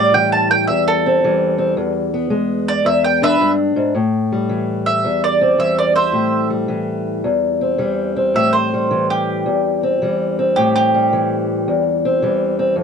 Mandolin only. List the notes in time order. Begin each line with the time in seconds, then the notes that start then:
Already playing: D5
0.14 G5
0.32 A5
0.51 G5
0.67 E5
0.88 A4
2.68 D5
2.86 E5
3.04 G5
3.23 B4 E5
4.86 E5
5.24 D5
5.60 E5
5.79 D5
5.96 C5 E5
8.36 E5
8.53 C5
9.10 G4
10.56 G4
10.76 G4